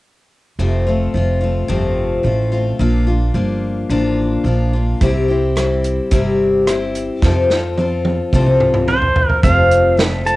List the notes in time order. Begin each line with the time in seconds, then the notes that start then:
0.59 F1 F2 C3 F3 A3 C4 F4
0.87 F3 A3 C4 F4
1.14 F1 F3 A3 C4 F4
1.41 F3 A3 C4 F4
1.68 G1 F2 C3 F3 A3 C4 F4
2.23 A1 F3 A3 C4 F4
2.52 F3 A3 C4 F4
2.79 A#1 A#2 F3 A#3 D4 F4
3.07 A#3 D4 F4
3.34 G1 F3 A#3 D4 F4
3.89 A1 F3 A#3 D4 F4
4.44 A#1 F3 A#3 D4 F4
4.73 A#3 D4 F4
5.01 C2 C3 G3 C4 E4 G4, kick, closed hi-hat
5.28 C4 E4 G4
5.56 G3 C4 E4 G4, cross-stick, closed hi-hat
5.84 closed hi-hat
6.11 G1 C3 G3 C4 E4 G4, kick, closed hi-hat
6.67 G3 C4 E4 G4, cross-stick, closed hi-hat
6.95 closed hi-hat
7.22 F2 C3 F3 C4 F4 A4, kick, snare
7.50 F3 C4 F4 A4, snare
7.77 F3 C4 F4 A4, high tom
8.05 high tom
8.33 C2 F2 C3 F3 C4 F4 A4, kick, mid tom
8.47 mid tom
8.60 mid tom
8.74 mid tom
8.88 F3 C4 F4 A4 C5, mid tom
9.02 floor tom
9.16 floor tom
9.28 A#4, floor tom
9.43 F1 F2 C3 F3 C4 F4 A4 F5, kick, closed hi-hat
9.71 closed hi-hat
9.97 F3 C4 F4 A4 E5, snare, closed hi-hat
10.25 F3 C4 F4 A4 A5, closed hi-hat